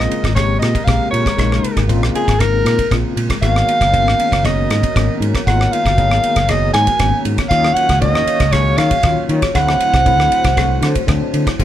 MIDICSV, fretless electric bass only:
0, 0, Header, 1, 3, 480
1, 0, Start_track
1, 0, Tempo, 510638
1, 1302, Time_signature, 4, 2, 24, 8
1, 10943, End_track
2, 0, Start_track
2, 0, Title_t, "Fretless electric bass"
2, 0, Program_c, 0, 35
2, 225, Note_on_c, 0, 32, 73
2, 536, Note_off_c, 0, 32, 0
2, 580, Note_on_c, 0, 46, 82
2, 687, Note_off_c, 0, 46, 0
2, 820, Note_on_c, 0, 34, 94
2, 927, Note_off_c, 0, 34, 0
2, 1058, Note_on_c, 0, 46, 74
2, 1166, Note_off_c, 0, 46, 0
2, 1297, Note_on_c, 0, 34, 92
2, 1508, Note_off_c, 0, 34, 0
2, 1658, Note_on_c, 0, 32, 80
2, 1888, Note_off_c, 0, 32, 0
2, 1888, Note_on_c, 0, 34, 84
2, 1997, Note_off_c, 0, 34, 0
2, 2140, Note_on_c, 0, 32, 70
2, 2453, Note_off_c, 0, 32, 0
2, 2487, Note_on_c, 0, 46, 84
2, 2599, Note_off_c, 0, 46, 0
2, 2740, Note_on_c, 0, 34, 102
2, 2847, Note_off_c, 0, 34, 0
2, 2972, Note_on_c, 0, 46, 78
2, 3082, Note_off_c, 0, 46, 0
2, 3217, Note_on_c, 0, 32, 96
2, 3428, Note_off_c, 0, 32, 0
2, 3580, Note_on_c, 0, 30, 85
2, 3812, Note_off_c, 0, 30, 0
2, 3812, Note_on_c, 0, 32, 88
2, 3920, Note_off_c, 0, 32, 0
2, 4062, Note_on_c, 0, 30, 74
2, 4374, Note_off_c, 0, 30, 0
2, 4416, Note_on_c, 0, 44, 75
2, 4524, Note_off_c, 0, 44, 0
2, 4661, Note_on_c, 0, 32, 97
2, 4767, Note_off_c, 0, 32, 0
2, 4891, Note_on_c, 0, 44, 80
2, 5001, Note_off_c, 0, 44, 0
2, 5141, Note_on_c, 0, 32, 103
2, 5349, Note_off_c, 0, 32, 0
2, 5499, Note_on_c, 0, 30, 90
2, 5733, Note_off_c, 0, 30, 0
2, 5733, Note_on_c, 0, 32, 81
2, 5840, Note_off_c, 0, 32, 0
2, 5980, Note_on_c, 0, 30, 84
2, 6292, Note_off_c, 0, 30, 0
2, 6334, Note_on_c, 0, 44, 82
2, 6443, Note_off_c, 0, 44, 0
2, 6579, Note_on_c, 0, 32, 96
2, 6685, Note_off_c, 0, 32, 0
2, 6815, Note_on_c, 0, 44, 75
2, 6922, Note_off_c, 0, 44, 0
2, 7057, Note_on_c, 0, 39, 103
2, 7266, Note_off_c, 0, 39, 0
2, 7416, Note_on_c, 0, 37, 85
2, 7653, Note_off_c, 0, 37, 0
2, 7653, Note_on_c, 0, 39, 81
2, 7759, Note_off_c, 0, 39, 0
2, 7896, Note_on_c, 0, 37, 83
2, 8209, Note_off_c, 0, 37, 0
2, 8248, Note_on_c, 0, 51, 83
2, 8358, Note_off_c, 0, 51, 0
2, 8490, Note_on_c, 0, 39, 98
2, 8600, Note_off_c, 0, 39, 0
2, 8732, Note_on_c, 0, 51, 83
2, 8840, Note_off_c, 0, 51, 0
2, 8978, Note_on_c, 0, 38, 110
2, 9186, Note_off_c, 0, 38, 0
2, 9339, Note_on_c, 0, 36, 87
2, 9570, Note_off_c, 0, 36, 0
2, 9570, Note_on_c, 0, 38, 85
2, 9677, Note_off_c, 0, 38, 0
2, 9818, Note_on_c, 0, 36, 76
2, 10130, Note_off_c, 0, 36, 0
2, 10165, Note_on_c, 0, 50, 82
2, 10276, Note_off_c, 0, 50, 0
2, 10413, Note_on_c, 0, 38, 100
2, 10521, Note_off_c, 0, 38, 0
2, 10653, Note_on_c, 0, 50, 73
2, 10761, Note_off_c, 0, 50, 0
2, 10898, Note_on_c, 0, 31, 94
2, 10943, Note_off_c, 0, 31, 0
2, 10943, End_track
3, 0, Start_track
3, 0, Title_t, "Muted fretless electric bass strokes"
3, 108, Note_on_c, 9, 29, 36
3, 202, Note_off_c, 9, 29, 0
3, 1182, Note_on_c, 9, 29, 34
3, 1276, Note_off_c, 9, 29, 0
3, 3100, Note_on_c, 9, 29, 36
3, 3194, Note_off_c, 9, 29, 0
3, 3932, Note_on_c, 9, 29, 36
3, 4026, Note_off_c, 9, 29, 0
3, 5023, Note_on_c, 9, 29, 34
3, 5117, Note_off_c, 9, 29, 0
3, 6939, Note_on_c, 9, 29, 36
3, 7033, Note_off_c, 9, 29, 0
3, 7293, Note_on_c, 9, 29, 36
3, 7387, Note_off_c, 9, 29, 0
3, 7770, Note_on_c, 9, 29, 36
3, 7864, Note_off_c, 9, 29, 0
3, 9208, Note_on_c, 9, 29, 33
3, 9302, Note_off_c, 9, 29, 0
3, 9702, Note_on_c, 9, 29, 38
3, 9796, Note_off_c, 9, 29, 0
3, 10943, End_track
0, 0, End_of_file